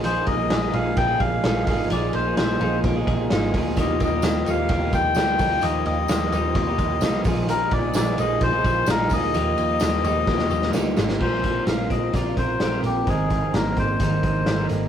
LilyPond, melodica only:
\new Staff \with { instrumentName = "Melodica" } { \time 4/4 \key bes \mixolydian \tempo 4 = 129 c''8 ees''4 f''8 g''8 f''4 f''8 | d''8 c''8 c''4 r2 | ees''8 ees''4 f''4 g''4. | ees''8 ees''2. r8 |
bes'8 d''8 d''8 ees''8 c''4 bes'8 ees''8~ | ees''2. r4 | c''4 f''8 ees''8 d''8 c''4 g'8 | aes'4 bes'8 c''2 r8 | }